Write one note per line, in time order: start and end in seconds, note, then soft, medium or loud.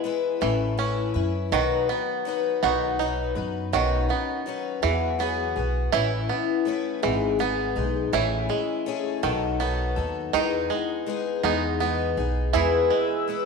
0.00 0.41 E3 medium
0.00 0.49 G#3 medium
0.00 0.41 G#3 medium
0.00 0.49 E4 medium
0.05 0.42 B3 medium
0.05 0.40 E4 medium
0.05 0.40 B4 medium
0.41 1.12 A1 loud
0.41 1.52 E3 medium
0.41 0.76 A3 medium
0.41 0.77 C#4 medium
0.41 0.78 E4 medium
0.41 0.78 B4 medium
0.77 1.15 A3 medium
0.77 1.15 C#4 medium
0.77 1.59 C#4 medium
0.77 1.15 E4 medium
0.77 1.13 B4 medium
1.14 1.50 F#2 medium
1.14 1.53 C#4 soft
1.14 1.52 E4 medium
1.14 1.51 B4 medium
1.52 1.87 B1 medium
1.52 1.89 B2 medium
1.52 3.72 D#3 medium
1.52 1.89 D#3 medium
1.52 1.89 F#3 medium
1.52 1.89 B3 medium
1.52 1.89 D#4 medium
1.52 2.63 F#4 medium
1.52 1.88 B4 medium
1.89 2.24 F#3 soft
1.89 2.63 B3 medium
1.89 2.25 B3 soft
1.89 2.26 D#4 medium
1.89 2.26 B4 medium
2.25 2.62 F#3 medium
2.25 2.62 B3 medium
2.25 2.62 D#4 medium
2.25 2.62 B4 medium
2.63 3.32 B1 medium
2.63 3.00 B2 medium
2.63 3.00 D#3 medium
2.63 2.98 F#3 medium
2.63 4.03 B3 medium
2.63 2.99 B3 medium
2.63 2.99 D#4 medium
2.63 2.98 D#4 medium
2.63 3.73 F#4 medium
2.63 2.99 B4 medium
2.99 3.36 F#3 medium
2.99 3.36 B3 medium
2.99 3.80 D#4 medium
2.99 3.35 D#4 medium
2.99 3.34 B4 medium
3.35 3.71 F#2 medium
3.35 3.73 F#3 soft
3.35 3.73 B3 soft
3.35 3.73 D#4 medium
3.35 3.72 B4 medium
3.73 4.08 B1 medium
3.73 4.09 B2 medium
3.73 4.09 D#3 medium
3.73 4.82 D#3 medium
3.73 4.10 F#3 medium
3.73 4.10 C#4 medium
3.73 4.09 D#4 medium
3.73 4.91 F#4 medium
3.73 4.08 B4 medium
4.09 4.45 F#3 soft
4.09 4.90 B3 medium
4.09 4.46 C#4 soft
4.09 4.46 D#4 medium
4.09 4.46 B4 medium
4.46 4.82 F#3 medium
4.46 4.83 C#4 medium
4.46 4.83 D#4 medium
4.46 4.82 B4 medium
4.82 5.53 E2 medium
4.82 5.92 E3 medium
4.82 5.20 E3 medium
4.82 5.18 F#3 medium
4.82 5.19 B3 medium
4.82 5.19 F#4 medium
4.82 5.19 G#4 medium
5.19 5.56 F#3 medium
5.19 5.56 B3 medium
5.19 6.00 B3 medium
5.19 5.56 F#4 medium
5.19 5.55 G#4 medium
5.56 5.91 B1 medium
5.56 5.93 B3 soft
5.56 5.93 F#4 soft
5.56 5.93 G#4 medium
5.92 6.28 A1 medium
5.92 7.02 E3 medium
5.92 6.29 A3 medium
5.92 6.30 C#4 medium
5.92 7.10 E4 medium
5.92 6.30 E4 medium
5.92 6.28 B4 medium
6.29 7.10 B3 medium
6.29 6.65 C#4 soft
6.29 6.67 E4 soft
6.29 6.66 B4 medium
6.65 7.02 A3 medium
6.65 7.03 C#4 medium
6.65 7.03 E4 medium
6.65 7.02 B4 medium
7.03 7.73 G#1 medium
7.03 7.41 G#2 medium
7.03 8.12 E3 medium
7.03 7.40 E3 medium
7.03 7.38 G#3 medium
7.03 7.39 B3 medium
7.03 7.40 D#4 medium
7.03 7.39 G#4 medium
7.39 7.76 G#3 medium
7.39 8.21 B3 medium
7.39 7.77 B3 medium
7.39 7.76 D#4 medium
7.39 7.74 G#4 medium
7.76 8.11 B1 medium
7.76 8.12 G#3 soft
7.76 8.13 B3 soft
7.76 8.13 D#4 medium
7.76 8.13 G#4 medium
8.13 8.48 A1 medium
8.13 9.23 E3 medium
8.13 8.50 A3 medium
8.13 8.50 C#4 medium
8.13 9.31 E4 medium
8.13 8.49 E4 medium
8.13 8.48 G#4 medium
8.49 9.30 G#3 medium
8.49 8.86 C#4 soft
8.49 8.87 E4 soft
8.49 8.86 G#4 medium
8.86 9.23 A3 medium
8.86 9.23 C#4 medium
8.86 9.23 E4 medium
8.86 9.22 G#4 medium
9.23 9.93 B1 loud
9.23 9.61 B2 medium
9.23 10.32 D#3 medium
9.23 9.61 D#3 medium
9.23 9.58 F#3 medium
9.23 9.59 B3 medium
9.23 9.60 D#4 medium
9.23 9.60 A4 medium
9.60 9.97 F#3 medium
9.60 10.41 B3 medium
9.60 9.97 B3 medium
9.60 9.97 D#4 medium
9.60 9.95 A4 medium
9.96 10.32 D#2 medium
9.96 10.33 F#3 soft
9.96 10.33 B3 soft
9.96 10.33 D#4 medium
9.96 10.33 A4 medium
10.33 10.68 E2 medium
10.33 12.53 D#3 medium
10.33 10.70 E3 medium
10.33 10.70 G#3 medium
10.33 10.71 B3 medium
10.33 11.43 D#4 medium
10.33 10.71 D#4 medium
10.33 10.69 G#4 medium
10.70 11.42 G#3 soft
10.70 11.06 B3 soft
10.70 11.07 D#4 medium
10.70 11.07 G#4 medium
11.06 11.43 G#3 medium
11.06 11.43 B3 medium
11.06 11.42 D#4 medium
11.06 11.42 G#4 medium
11.43 12.13 E2 medium
11.43 11.81 E3 medium
11.43 12.61 G#3 medium
11.43 11.79 G#3 medium
11.43 11.79 B3 medium
11.43 11.80 B3 medium
11.43 11.80 D#4 medium
11.43 12.54 D#4 medium
11.43 11.80 G#4 medium
11.80 12.17 G#3 medium
11.80 12.61 B3 medium
11.80 12.18 B3 medium
11.80 12.18 D#4 medium
11.80 12.16 G#4 medium
12.17 12.52 B1 medium
12.17 12.54 B3 soft
12.17 12.55 D#4 medium
12.17 12.54 G#4 medium
12.53 12.89 E2 medium
12.53 13.45 E3 medium
12.53 12.91 E3 medium
12.53 12.91 G#3 medium
12.53 12.91 B3 medium
12.53 13.45 E4 medium
12.53 12.91 E4 medium
12.53 13.45 G#4 loud
12.53 13.45 B4 medium
12.53 12.90 B4 medium
12.53 13.45 G#5 medium
12.53 13.45 E6 medium
12.90 13.45 G#3 soft
12.90 13.27 B3 soft
12.90 13.28 E4 soft
12.90 13.27 B4 medium
13.28 13.45 G#3 medium
13.28 13.45 B3 medium
13.28 13.45 E4 medium
13.28 13.45 B4 medium